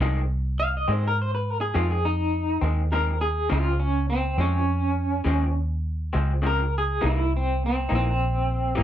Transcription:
0.00 0.86 C2 medium
0.00 0.19 F2 medium
0.00 0.19 D#3 loud
0.00 0.19 G#3 loud
0.00 0.19 C4 loud
0.60 0.74 F5 loud
0.77 0.92 D#5 medium
0.88 1.73 G#2 medium
0.88 1.07 D#3 soft
0.88 1.06 G#3 soft
0.88 1.06 C4 medium
0.92 1.04 C5 medium
1.08 1.20 A#4 medium
1.22 1.34 C5 medium
1.35 1.50 B4 medium
1.50 1.61 A#4 medium
1.61 1.75 G#4 medium
1.74 1.93 F2 medium
1.74 2.60 F2 medium
1.74 1.93 D#3 medium
1.74 1.93 G#3 medium
1.74 1.93 C4 medium
1.74 1.90 F4 medium
1.91 2.05 G#4 medium
2.05 2.62 D#4 medium
2.61 3.48 D#2 medium
2.61 2.81 D#3 soft
2.61 2.81 G#3 soft
2.61 2.80 C4 soft
2.92 3.10 F2 medium
2.92 3.10 D#3 medium
2.92 3.10 G#3 medium
2.92 3.11 C4 medium
2.92 3.21 A#4 medium
3.21 3.50 G#4 loud
3.49 4.36 C#2 medium
3.49 3.68 C#3 medium
3.49 3.68 F3 medium
3.49 3.69 G#3 medium
3.49 3.69 C4 medium
3.49 3.80 F4 loud
3.80 4.08 C#4 medium
4.10 4.38 C4 medium
4.38 5.23 F2 medium
4.38 4.57 F3 soft
4.38 4.57 G#3 soft
4.38 4.56 C4 soft
4.38 5.53 C#4 medium
5.24 6.11 D#2 medium
5.24 5.43 C#3 medium
5.24 5.43 F3 medium
5.24 5.44 G#3 medium
5.24 5.44 C4 medium
6.13 6.99 C#2 medium
6.13 6.32 F3 soft
6.13 6.31 G#3 soft
6.13 6.31 C4 medium
6.42 6.60 C#3 medium
6.42 6.61 F3 medium
6.42 6.61 G#3 medium
6.42 6.61 C4 medium
6.47 6.73 A#4 loud
6.78 7.04 G#4 loud
7.01 7.88 C2 medium
7.01 7.19 C3 medium
7.01 7.19 E3 medium
7.01 7.19 A#3 medium
7.01 7.19 D#4 medium
7.06 7.32 E4 medium
7.37 7.62 C4 medium
7.66 7.92 C4 medium
7.89 8.76 A#1 medium
7.89 8.08 E3 soft
7.89 8.07 A#3 soft
7.89 8.07 D#4 soft
7.95 8.83 C4 loud
8.75 8.83 G#1 medium
8.75 8.83 C3 medium
8.75 8.83 E3 medium
8.75 8.83 A#3 loud
8.75 8.83 D#4 medium

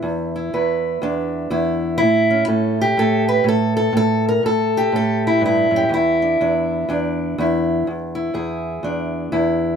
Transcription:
0.00 0.52 E2 medium
0.00 0.35 E4 medium
0.36 1.51 E4 medium
0.54 1.00 E2 medium
0.54 1.97 B4 medium
1.02 1.49 E2 medium
1.02 1.98 D4 medium
1.50 2.00 E2 medium
1.50 1.98 E4 medium
1.98 2.47 A2 medium
1.98 2.48 E4 loud
2.30 3.94 C#4 soft
2.47 2.97 A2 medium
2.47 2.99 A4 soft
2.81 3.48 G4 medium
2.97 3.43 A2 medium
2.97 3.28 A4 medium
3.28 3.47 B4 loud
3.44 3.91 A2 medium
3.48 3.75 A4 loud
3.77 3.95 A4 loud
3.93 4.42 A2 medium
3.97 4.26 A4 loud
4.29 4.45 A#4 loud
4.43 4.91 A2 medium
4.43 4.94 A4 loud
4.77 5.44 G4 medium
4.92 5.91 A2 medium
4.92 5.25 A4 loud
5.27 5.44 E4 medium
5.41 5.71 G2 medium
5.46 5.93 E4 medium
5.71 5.89 F#2 medium
5.76 5.93 G4 medium
5.89 6.40 E2 medium
5.94 7.39 E4 medium
6.22 6.41 D4 soft
6.41 6.88 E2 medium
6.41 6.89 D4 soft
6.89 7.37 E2 medium
6.89 7.85 D4 medium
7.38 7.86 E2 medium
7.38 7.86 E4 medium
7.87 8.33 E2 medium
8.15 9.31 E4 medium
8.34 8.82 E2 medium
8.34 9.76 G#4 soft
8.83 9.31 E2 medium
8.83 9.76 D4 medium
9.32 9.76 E2 medium
9.32 9.76 E4 medium

